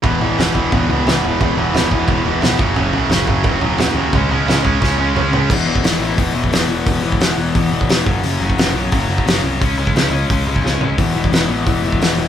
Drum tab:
CC |----------------|----------------|----------------|----------------|
HH |----------------|----------------|----------------|----------------|
SD |----o-------o---|----o-------o---|----o-------o---|----o---o-------|
T2 |----------------|----------------|----------------|------------o---|
FT |o-o-o-o-o-o-o-o-|o-o-o-o-o-o-o-o-|o-o-o-o-o-o-o-o-|o-o-o-o-------o-|
BD |o-----o-o-------|o-----o-o-----o-|------o-o-------|o-----o-o-------|

CC |x---------------|----------------|----------------|----------------|
HH |----o---o---o---|o---o---o---o---|o---o---o---o---|o---o---o-------|
SD |----o-------o---|----o-------o---|----o-------o---|----o-------o---|
T2 |----------------|----------------|----------------|----------------|
FT |----------------|----------------|----------------|--------------o-|
BD |o--o----o--o----|o--o----o--o--o-|---o----o--o----|o--o----o--o----|

CC |----------------|
HH |o---o---o---o---|
SD |----o-------o---|
T2 |----------------|
FT |----------------|
BD |o--o----o--o----|